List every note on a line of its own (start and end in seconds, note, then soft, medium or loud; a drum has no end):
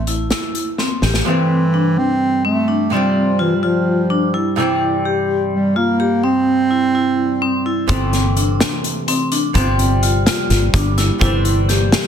0.00 0.31 A1 medium
0.07 0.26 E4 medium
0.07 closed hi-hat medium
0.30 0.68 E4 medium
0.30 snare medium
0.30 closed hi-hat medium
0.55 closed hi-hat medium
0.78 0.97 C4 medium
0.78 snare soft
1.02 1.21 A1 medium
1.02 1.21 G4 medium
1.02 snare medium
1.14 snare medium
1.25 2.88 G2 medium
1.25 2.88 C3 medium
1.25 2.89 E3 medium
1.25 2.00 E3 medium
1.25 2.89 A3 medium
1.25 1.63 C4 medium
1.25 2.90 C4 medium
1.74 2.10 D4 medium
1.98 2.45 C4 loud
2.45 2.95 A3 medium
2.45 2.63 C4 medium
2.68 2.86 D4 medium
2.90 4.54 G2 medium
2.90 4.54 C3 medium
2.90 4.55 F3 medium
2.90 4.55 G3 medium
2.90 3.42 G3 medium
2.90 3.29 C4 medium
2.90 4.55 C4 medium
3.39 3.57 E3 medium
3.39 3.57 F4 medium
3.56 3.66 G3 medium
3.63 4.35 F3 medium
3.63 4.00 F4 medium
4.10 4.29 D4 medium
4.34 4.52 E4 medium
4.56 7.85 G2 medium
4.56 7.85 C3 medium
4.56 7.86 E3 medium
4.56 7.86 G3 medium
4.56 7.86 C4 medium
4.56 4.94 E4 medium
5.05 5.42 G4 medium
5.53 5.78 G3 medium
5.76 6.26 A#3 medium
5.76 5.95 F4 medium
6.00 6.18 G4 medium
6.24 6.60 C4 medium
6.24 7.66 C4 loud
6.71 6.89 E4 medium
6.95 7.31 E4 medium
7.42 7.60 C4 medium
7.66 7.84 E4 medium
7.88 8.61 G1 medium
7.88 9.51 C3 medium
7.88 9.52 E3 medium
7.88 9.52 A3 medium
7.88 8.26 C4 medium
7.88 9.53 C4 medium
7.88 kick loud
7.88 closed hi-hat medium
8.13 snare soft
8.13 closed hi-hat medium
8.37 8.73 D4 medium
8.37 closed hi-hat medium
8.60 snare loud
8.60 closed hi-hat medium
8.84 closed hi-hat medium
9.08 9.26 C4 medium
9.08 closed hi-hat medium
9.32 9.50 D4 medium
9.32 closed hi-hat medium
9.54 10.27 G1 loud
9.54 11.17 C3 medium
9.54 11.18 F3 medium
9.54 11.18 G3 medium
9.54 9.92 C4 medium
9.54 11.19 C4 medium
9.54 kick loud
9.54 closed hi-hat medium
9.79 closed hi-hat medium
10.03 10.21 F4 medium
10.03 closed hi-hat medium
10.26 10.63 F4 medium
10.26 snare loud
10.26 closed hi-hat medium
10.50 10.68 G1 medium
10.50 snare soft
10.50 closed hi-hat medium
10.74 11.09 G1 loud
10.74 10.92 D4 medium
10.74 kick loud
10.74 snare soft
10.74 closed hi-hat medium
10.98 11.16 E4 medium
10.98 snare soft
10.98 closed hi-hat medium
11.19 11.93 G1 loud
11.19 12.07 C3 medium
11.19 12.07 E3 medium
11.19 12.07 G3 medium
11.19 12.07 C4 medium
11.19 11.58 E4 medium
11.19 kick loud
11.19 closed hi-hat medium
11.45 closed hi-hat medium
11.69 12.05 G4 medium
11.69 snare soft
11.69 closed hi-hat medium
11.92 snare loud
11.92 closed hi-hat medium